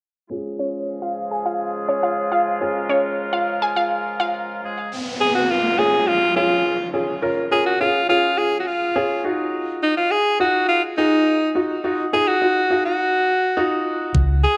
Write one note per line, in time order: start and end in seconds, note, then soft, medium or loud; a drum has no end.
0.30 4.88 C#3 medium
0.30 4.88 F3 medium
0.30 4.59 G#3 medium
0.30 2.57 C#4 medium
0.30 4.88 F4 medium
0.30 2.57 F4 medium
0.30 2.58 G#4 medium
0.30 2.57 G#4 medium
0.59 0.69 C#5 medium
1.02 1.12 F5 medium
1.31 1.41 G#5 medium
1.46 1.55 F5 medium
1.89 1.99 C#5 medium
2.03 2.13 F5 medium
2.32 2.42 F5 medium
2.60 4.59 C#4 medium
2.60 4.59 F4 medium
2.60 4.59 G#4 medium
2.60 4.61 A#4 medium
2.90 2.99 C#5 medium
3.33 3.43 F5 medium
3.62 3.72 G#5 medium
3.76 3.86 F5 medium
4.20 4.30 F5 medium
4.63 4.91 G#3 medium
4.63 4.91 G#4 medium
4.92 downlifter medium
5.21 5.34 G#4 loud
5.35 5.51 F#4 medium
5.50 5.80 F4 medium
5.78 6.16 C#4 medium
5.78 6.16 F4 medium
5.78 6.16 G#4 medium
5.78 6.09 G#4 loud
6.07 6.36 F4 medium
6.36 6.74 C#4 medium
6.36 6.74 F4 medium
6.36 6.90 F4 medium
6.36 6.74 G#4 medium
6.93 7.12 C#4 medium
6.93 7.12 F4 medium
6.93 7.13 G#4 medium
7.22 7.41 C#4 medium
7.22 7.41 F4 medium
7.22 7.41 A#4 medium
7.51 7.70 C#4 medium
7.51 7.70 F4 medium
7.51 7.65 G#4 loud
7.51 7.70 A#4 medium
7.66 7.79 F#4 medium
7.80 7.99 C#4 medium
7.80 7.99 F4 medium
7.80 8.07 F4 medium
7.80 7.99 G#4 medium
8.09 8.66 C#4 medium
8.09 8.66 F4 medium
8.09 8.39 F4 medium
8.09 8.66 G#4 medium
8.38 8.59 G#4 medium
8.60 8.68 F#4 medium
8.67 9.24 F4 medium
8.95 9.24 C#4 medium
8.95 9.23 F4 medium
8.95 9.24 G#4 medium
9.24 10.17 D#4 medium
9.24 10.17 F4 medium
9.24 10.17 F#4 medium
9.83 9.96 D#4 medium
9.97 10.13 F4 medium
10.11 10.39 G#4 loud
10.40 10.77 D#4 medium
10.40 10.78 F4 medium
10.40 10.67 F#4 medium
10.40 10.78 F#4 medium
10.69 10.82 F4 medium
10.97 11.51 D#4 medium
10.97 11.35 D#4 medium
10.97 11.35 F4 medium
10.97 11.36 G#4 medium
11.55 11.74 D#4 medium
11.55 11.74 F4 medium
11.55 11.74 F#4 medium
11.84 12.03 D#4 medium
11.84 12.03 F4 medium
11.84 12.03 F#4 medium
12.13 12.32 D#4 medium
12.13 12.32 F4 medium
12.13 12.29 G#4 loud
12.13 12.32 G#4 medium
12.28 12.85 F#4 loud
12.41 12.60 D#4 medium
12.41 12.61 F4 medium
12.41 12.61 F#4 medium
12.70 13.27 D#4 medium
12.70 13.27 F#4 medium
12.70 13.27 F5 medium
12.85 13.82 F#4 medium
13.57 14.15 D#4 medium
13.57 14.15 F4 medium
13.57 14.15 F#4 loud
14.15 14.43 C#2 medium
14.15 kick loud
14.44 14.57 G#4 loud